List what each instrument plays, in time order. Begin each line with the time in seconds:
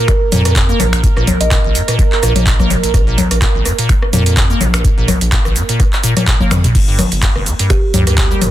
Already playing: analog synth pad A#4
0.08 acid bass A#3, kalimba A#4, finger snap, kick, cross-stick, closed hi-hat, shaker
0.32 analog synth bass F2, acid bass A#2, open hi-hat, low conga, shaker
0.45 acid bass A#2, cross-stick, closed hi-hat, shaker
0.56 acid bass A#2, kick, clap, closed hi-hat, shaker
0.69 acid bass A#3, shaker
0.80 analog synth bass A#1, acid bass G#2, cross-stick, open hi-hat, low conga, shaker
0.93 acid bass A#1, finger snap, open hi-hat, shaker
1.03 acid bass A#2, kick, closed hi-hat, shaker
1.16 analog synth bass A#1, acid bass A#2, cross-stick
1.27 acid bass A#1, open hi-hat, low conga, shaker
1.40 analog synth bass A#1, kalimba D#5, closed hi-hat, shaker
1.51 acid bass A#2, finger snap, kick, cross-stick, clap, closed hi-hat, shaker
1.64 analog synth bass G#1, acid bass A#1
1.75 acid bass G#2, open hi-hat, shaker
1.88 acid bass A#2, cross-stick, closed hi-hat, shaker
1.99 acid bass A#3, kick, closed hi-hat, shaker
2.12 clap
2.23 analog synth bass A#1, acid bass A#2, cross-stick, open hi-hat, shaker
2.36 closed hi-hat, low conga, shaker
2.46 acid bass A#2, kick, clap, open hi-hat, shaker
2.59 acid bass A#3, kick, cross-stick, low conga, shaker
2.70 acid bass G#2, open hi-hat, low conga, shaker
2.83 acid bass A#1, closed hi-hat, shaker
2.94 analog synth bass A#1, acid bass A#2, kick, cross-stick, closed hi-hat, shaker
3.07 acid bass A#2
3.18 acid bass A#1, open hi-hat, low conga, shaker
3.31 analog synth bass A#1, cross-stick, closed hi-hat, shaker
3.42 acid bass A#2, kick, clap, closed hi-hat, shaker
3.55 analog synth bass G#1, acid bass A#1
3.65 acid bass G#2, cross-stick, open hi-hat, shaker
3.78 acid bass A#2, closed hi-hat, shaker
3.89 acid bass A#3, finger snap, kick, closed hi-hat, shaker
4.02 cross-stick
4.13 analog synth bass F2, acid bass A#2, open hi-hat, low conga, shaker
4.26 acid bass A#2, closed hi-hat, shaker
4.37 kick, cross-stick, clap, closed hi-hat, shaker
4.50 acid bass A#3, shaker
4.61 analog synth bass A#1, acid bass G#2, open hi-hat, low conga, shaker
4.74 acid bass A#1, finger snap, cross-stick, open hi-hat, shaker
4.84 acid bass A#2, kick, closed hi-hat, shaker
4.98 analog synth bass A#1, acid bass A#2
5.08 acid bass A#1, cross-stick, open hi-hat, low conga, shaker
5.21 analog synth bass A#1, closed hi-hat, shaker
5.32 acid bass A#2, finger snap, kick, clap, closed hi-hat, shaker
5.45 analog synth bass G#1, acid bass A#1, cross-stick, shaker
5.56 acid bass G#2, open hi-hat, shaker
5.69 acid bass A#2, closed hi-hat, shaker
5.80 acid bass A#3, kick, cross-stick, closed hi-hat, shaker
5.93 clap, shaker
6.04 acid bass A#2, open hi-hat, shaker
6.17 acid bass A#2, cross-stick, closed hi-hat, low conga, shaker
6.27 acid bass A#2, kick, clap, open hi-hat, shaker
6.40 acid bass A#3, kick, low conga, shaker
6.51 analog synth bass F2, acid bass G#2, finger snap, cross-stick, open hi-hat, high tom, low conga, shaker
6.64 acid bass A#1, closed hi-hat, mid tom, shaker
6.75 analog synth bass G1, acid bass G2, analog synth pad A#4, kick, closed hi-hat, crash, shaker
6.88 acid bass G2
6.99 acid bass G1, cross-stick, open hi-hat, low conga, shaker
7.12 analog synth bass G1, closed hi-hat, shaker
7.22 acid bass G2, kick, clap, closed hi-hat, shaker
7.36 analog synth bass F1, acid bass G1, cross-stick
7.46 acid bass F2, open hi-hat, shaker
7.59 acid bass G2, closed hi-hat, shaker
7.70 acid bass G3, kalimba G4, finger snap, kick, cross-stick, closed hi-hat, shaker
7.94 analog synth bass D2, acid bass G2, open hi-hat, low conga, shaker
8.07 acid bass G2, cross-stick, closed hi-hat, shaker
8.18 acid bass G2, kick, clap, closed hi-hat, shaker
8.31 acid bass G3, shaker
8.41 analog synth bass G1, acid bass F2, cross-stick, open hi-hat, low conga, shaker